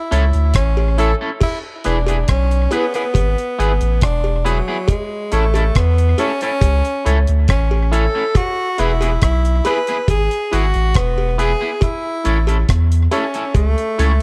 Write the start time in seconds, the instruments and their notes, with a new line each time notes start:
Already playing: tenor saxophone E4
0.11 sub bass C#2, clean electric guitar C#4 E4 A4, synth stab E4 A4 C#5, closed hi-hat
0.33 sub bass D2, closed hi-hat
0.54 sub bass A1, tenor saxophone C#4, kick, cross-stick, closed hi-hat
0.77 cowbell
0.98 clean electric guitar C#4 E4 A4, synth stab E4 A4 C#5, tenor saxophone A4, closed hi-hat
1.21 clean electric guitar C#4 E4 A4
1.41 tenor saxophone E4, kick, crash, cowbell
1.84 sub bass E1, clean electric guitar B3 E4 G#4, tenor saxophone D4, synth stab E4 G#4 B4, closed hi-hat
2.07 clean electric guitar B3 E4 G#4, closed hi-hat, cowbell
2.28 sub bass B1, tenor saxophone C#4, kick, cross-stick, closed hi-hat
2.51 closed hi-hat
2.71 clean electric guitar B3 E4 G#4, tenor saxophone B3, synth stab E4 G#4 B4, closed hi-hat, cowbell
2.94 tenor saxophone B3, clean electric guitar B3 E4 G#4, closed hi-hat
3.14 sub bass G#1, kick, closed hi-hat, cowbell
3.38 closed hi-hat
3.58 sub bass G#1, clean electric guitar B3 E4 G#4, synth stab E4 G#4 B4, closed hi-hat
3.81 sub bass A1, closed hi-hat
4.01 sub bass E1, tenor saxophone D4, kick, cross-stick, closed hi-hat
4.24 cowbell
4.45 tenor saxophone F#3, clean electric guitar B3 E4 G#4, synth stab E4 G#4 B4, closed hi-hat
4.68 clean electric guitar B3 E4 G#4
4.88 tenor saxophone G#3, kick, closed hi-hat, cowbell
5.32 sub bass A1, tenor saxophone A3, clean electric guitar C#4 E4 A4, synth stab E4 A4 C#5, closed hi-hat
5.54 clean electric guitar C#4 E4 A4, closed hi-hat, cowbell
5.75 sub bass E2, tenor saxophone B3, kick, cross-stick, closed hi-hat
5.98 closed hi-hat
6.18 clean electric guitar C#4 E4 A4, tenor saxophone C#4, synth stab E4 A4 C#5, closed hi-hat, cowbell
6.41 tenor saxophone C#4, clean electric guitar C#4 E4 A4, closed hi-hat
6.61 sub bass C#2, kick, closed hi-hat, cowbell
6.85 closed hi-hat
7.05 sub bass C#2, clean electric guitar C#4 E4 A4, synth stab E4 A4 C#5, closed hi-hat
7.27 sub bass D2, closed hi-hat
7.48 sub bass A1, tenor saxophone C#4, kick, cross-stick, closed hi-hat
7.71 cowbell
7.92 clean electric guitar C#4 E4 A4, synth stab E4 A4 C#5, tenor saxophone A4, closed hi-hat
8.15 clean electric guitar C#4 E4 A4
8.35 tenor saxophone F#4, kick, closed hi-hat, cowbell
8.78 sub bass E1, clean electric guitar B3 E4 G#4, synth stab E4 G#4 B4, tenor saxophone E4, closed hi-hat
9.01 clean electric guitar B3 E4 G#4, closed hi-hat, cowbell
9.22 sub bass B1, tenor saxophone E4, kick, cross-stick, closed hi-hat
9.45 closed hi-hat
9.65 clean electric guitar B3 E4 G#4, synth stab E4 G#4 B4, tenor saxophone B4, closed hi-hat, cowbell
9.87 clean electric guitar B3 E4 G#4, closed hi-hat
10.08 sub bass G#1, tenor saxophone G#4, kick, closed hi-hat, cowbell
10.31 closed hi-hat
10.51 sub bass G#1, clean electric guitar B3 E4 G#4, synth stab E4 G#4 B4, tenor saxophone F#4, closed hi-hat
10.74 sub bass A1, closed hi-hat
10.94 sub bass E1, tenor saxophone B3, kick, cross-stick, closed hi-hat
11.18 cowbell
11.38 clean electric guitar B3 E4 G#4, synth stab E4 G#4 B4, tenor saxophone G#4, closed hi-hat
11.61 clean electric guitar B3 E4 G#4
11.81 tenor saxophone E4, kick, closed hi-hat, cowbell
12.24 sub bass A1, clean electric guitar C#4 E4 A4, synth stab E4 A4 C#5, closed hi-hat
12.47 clean electric guitar C#4 E4 A4, closed hi-hat, cowbell
12.69 sub bass E2, kick, cross-stick, closed hi-hat
12.92 closed hi-hat
13.11 clean electric guitar C#4 E4 A4, tenor saxophone C#4, synth stab E4 A4 C#5, closed hi-hat, cowbell
13.34 clean electric guitar C#4 E4 A4, closed hi-hat
13.54 sub bass C#2, tenor saxophone A3, kick, closed hi-hat, cowbell
13.78 closed hi-hat
13.98 sub bass C#2, clean electric guitar C#4 E4 A4, synth stab E4 A4 C#5, closed hi-hat